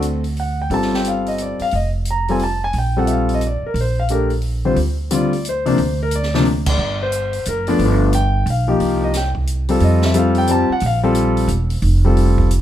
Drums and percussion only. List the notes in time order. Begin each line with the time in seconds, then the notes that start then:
0.02 closed hi-hat
0.24 open hi-hat
0.37 open hi-hat
0.70 open hi-hat
0.82 snare
0.94 snare
1.04 closed hi-hat
1.26 open hi-hat
1.38 closed hi-hat
1.59 open hi-hat
1.71 open hi-hat
2.05 closed hi-hat
2.28 open hi-hat
2.39 open hi-hat
2.73 open hi-hat
3.07 closed hi-hat
3.29 open hi-hat
3.41 closed hi-hat
3.75 open hi-hat
4.08 closed hi-hat
4.30 open hi-hat
4.42 open hi-hat
4.76 open hi-hat
5.11 closed hi-hat
5.33 open hi-hat
5.45 closed hi-hat
5.66 open hi-hat
5.78 open hi-hat
6.11 closed hi-hat
6.23 snare
6.34 snare
6.45 open hi-hat
6.66 kick, crash
7.12 closed hi-hat
7.33 open hi-hat
7.45 closed hi-hat
7.67 open hi-hat
7.79 open hi-hat
8.13 closed hi-hat
8.46 open hi-hat
8.80 open hi-hat
9.13 snare, closed hi-hat
9.35 kick
9.47 closed hi-hat
9.68 open hi-hat
9.80 open hi-hat
10.02 snare
10.14 closed hi-hat
10.35 open hi-hat
10.47 closed hi-hat
10.80 open hi-hat
11.15 closed hi-hat
11.37 open hi-hat
11.48 closed hi-hat
11.70 open hi-hat
11.82 open hi-hat
12.17 open hi-hat
12.38 kick
12.51 closed hi-hat